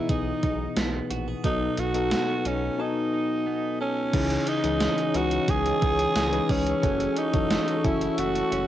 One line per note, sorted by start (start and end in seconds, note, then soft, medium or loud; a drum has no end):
0.00 1.44 B2 medium
0.00 0.47 E3 medium
0.00 0.76 B3 medium
0.00 1.44 B3 medium
0.00 0.43 D#4 medium
0.00 1.44 D#4 medium
0.00 0.11 E4 medium
0.00 1.46 E4 medium
0.00 1.46 G#4 loud
0.00 0.47 D#5 medium
0.09 0.33 B1 loud
0.09 0.77 D#4 medium
0.09 1.10 G#4 medium
0.09 kick medium
0.09 closed hi-hat medium
0.43 0.67 B1 medium
0.43 1.78 D#4 medium
0.43 kick medium
0.43 closed hi-hat medium
0.77 1.01 B1 loud
0.77 2.12 B3 medium
0.77 snare loud
0.77 closed hi-hat medium
1.10 1.35 A#1 medium
1.10 1.28 F#4 medium
1.10 closed hi-hat medium
1.28 1.51 G#4 medium
1.44 1.68 B1 loud
1.44 2.41 B2 medium
1.44 4.13 F#3 medium
1.44 1.90 B3 medium
1.44 1.90 D#4 medium
1.44 1.81 D#4 loud
1.44 1.90 F#4 medium
1.44 1.90 A4 medium
1.44 kick medium
1.44 closed hi-hat medium
1.77 2.14 B1 medium
1.77 2.46 D#4 medium
1.77 2.49 F#4 loud
1.77 closed hi-hat medium
1.94 2.71 B3 medium
1.94 2.71 D#4 medium
1.94 2.71 F#4 medium
1.94 2.71 A4 medium
1.94 closed hi-hat medium
2.11 3.45 B3 medium
2.11 snare medium
2.11 closed hi-hat medium
2.45 2.70 B1 loud
2.45 2.82 C#4 medium
2.45 3.13 D#4 medium
2.45 closed hi-hat medium
2.78 4.01 B3 medium
2.78 4.01 D#4 medium
2.78 3.81 D#4 medium
2.78 4.01 F#4 medium
2.78 3.79 A4 medium
2.78 4.01 G#5 medium
3.13 4.48 D#4 medium
3.47 4.21 B3 medium
3.81 4.50 C#4 medium
3.81 4.21 A4 medium
4.13 4.38 C#2 loud
4.13 5.11 C#3 medium
4.13 6.82 E3 medium
4.13 4.59 C#4 medium
4.13 4.59 D#4 medium
4.13 4.59 E4 medium
4.13 6.80 G#4 medium
4.13 4.60 G#4 medium
4.13 6.80 C#5 medium
4.13 8.67 C#6 medium
4.13 8.67 E6 medium
4.13 kick loud
4.13 closed hi-hat loud
4.13 crash medium
4.30 closed hi-hat medium
4.47 5.14 D#4 medium
4.47 5.18 D#4 medium
4.47 closed hi-hat medium
4.63 4.88 C#2 medium
4.63 5.10 E3 medium
4.63 5.10 C#4 medium
4.63 5.10 D#4 medium
4.63 5.10 G#4 medium
4.63 closed hi-hat medium
4.81 6.48 G#4 medium
4.81 snare loud
4.81 closed hi-hat medium
4.98 closed hi-hat soft
5.14 5.39 C#2 loud
5.14 6.22 E3 medium
5.14 6.21 C#4 medium
5.14 6.22 D#4 medium
5.14 5.81 D#4 medium
5.14 5.52 F#4 loud
5.14 6.22 B4 medium
5.14 closed hi-hat medium
5.31 closed hi-hat medium
5.48 5.73 C#2 loud
5.48 6.14 G#3 medium
5.48 6.52 G#4 loud
5.48 kick loud
5.48 closed hi-hat loud
5.66 closed hi-hat soft
5.82 6.07 C#2 loud
5.82 6.90 D#4 medium
5.82 kick medium
5.82 closed hi-hat medium
5.99 closed hi-hat soft
6.16 6.40 C#2 loud
6.16 6.90 G#3 medium
6.16 snare loud
6.16 closed hi-hat medium
6.32 6.78 E3 medium
6.32 6.78 C#4 medium
6.32 6.78 D#4 medium
6.32 6.79 B4 medium
6.32 closed hi-hat soft
6.49 6.74 C#2 medium
6.49 7.20 C#4 loud
6.49 6.90 G#4 medium
6.49 kick medium
6.49 open hi-hat medium
6.67 closed hi-hat medium
6.82 7.08 F#1 loud
6.82 8.67 E3 medium
6.82 7.29 C#4 medium
6.82 7.29 E4 medium
6.82 7.29 F#4 medium
6.82 8.67 A4 medium
6.82 7.29 A4 medium
6.82 8.67 F#5 medium
6.82 kick loud
6.82 closed hi-hat loud
7.00 closed hi-hat medium
7.16 7.83 C#4 medium
7.16 7.87 D#4 loud
7.16 closed hi-hat medium
7.33 7.58 F#1 medium
7.33 7.80 E3 medium
7.33 7.79 C#4 medium
7.33 7.80 F#4 medium
7.33 7.80 A4 medium
7.33 kick medium
7.33 closed hi-hat medium
7.50 8.67 A4 medium
7.50 snare loud
7.50 closed hi-hat medium
7.68 closed hi-hat soft
7.84 8.09 F#1 loud
7.84 8.67 C#4 medium
7.84 8.51 C#4 medium
7.84 8.67 E4 medium
7.84 8.21 E4 medium
7.84 8.67 F#4 medium
7.84 8.67 A4 medium
7.84 kick medium
7.84 closed hi-hat medium
8.01 closed hi-hat medium
8.18 8.42 F#1 loud
8.18 8.67 A3 medium
8.18 8.67 F#4 loud
8.18 closed hi-hat medium
8.35 closed hi-hat soft
8.52 8.67 F#1 loud
8.52 8.67 C#4 medium
8.52 closed hi-hat medium